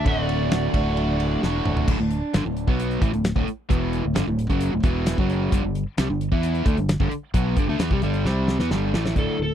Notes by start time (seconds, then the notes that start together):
Already playing: D4
0.05 D1 D2 A2 D3 A3 F#4 D5, kick, ride
0.29 ride
0.51 snare, ride
0.73 D1 D2 A2 D3 A3 F#4, kick, ride
0.97 ride
1.20 ride
1.42 E1 D2 A2 D3 A3 F#4, snare
1.65 D1, mid tom
1.77 floor tom
1.88 D1 D2 A2, kick, crash
2.00 D1 D2 A2
2.11 closed hi-hat
2.34 G1 G2 D3, snare, closed hi-hat
2.45 D1 D2 A2
2.57 closed hi-hat
2.67 B1 B2 F#3 B3, kick
2.80 closed hi-hat
2.91 closed hi-hat
3.01 A1 A2 E3, kick, closed hi-hat
3.13 D1 D2 A2, closed hi-hat
3.24 snare, closed hi-hat
3.36 D1 D2 A2, kick
3.47 muted overdriven electric guitar stroke, muted fingered electric bass stroke, closed hi-hat
3.69 E1 E2 B2 E3, kick, closed hi-hat
3.93 closed hi-hat
4.04 D1 D2 A2
4.15 G1 G2 D3, snare, closed hi-hat
4.28 D1 D2 A2
4.39 closed hi-hat
4.50 F#1 F#2 C#3 F#3, kick, closed hi-hat
4.61 closed hi-hat
4.73 D1 D2 A2
4.83 E1 E2 B2 E3, kick, closed hi-hat
5.06 snare, closed hi-hat
5.18 F#1 F#2 C#3 F#3, kick
5.30 closed hi-hat
5.52 G1 G2 D3, kick, closed hi-hat
5.64 G1 G2 D3
5.75 closed hi-hat
5.98 C2 C3 G3, snare, closed hi-hat
6.10 G1 G2 D3
6.21 closed hi-hat
6.32 E2 E3 B3 E4, kick
6.43 closed hi-hat
6.55 closed hi-hat
6.65 D2 D3 A3, kick, closed hi-hat
6.77 G1 G2 D3, closed hi-hat
6.89 snare, closed hi-hat
7.00 G1 G2 D3, kick
7.11 muted overdriven electric guitar stroke, closed hi-hat
7.34 B1 B2 F#3 B3, kick, closed hi-hat
7.56 G1 G2 D3, kick, closed hi-hat
7.68 D2 D3 A3
7.79 E2 E3 B3, snare, closed hi-hat
7.90 C2 C3 G3, kick
8.02 G1 G2 D3 G3, closed hi-hat
8.14 closed hi-hat
8.25 C2 C3 G3 C4, snare
8.48 snare
8.60 E2 E3 B3, snare
8.71 G1 G2 D3 G3, snare
8.93 A1 A2 E3 A3, snare
9.06 snare
9.16 D1 D2 A2 D3 A4, kick, closed hi-hat
9.39 D1 D2 A2 A4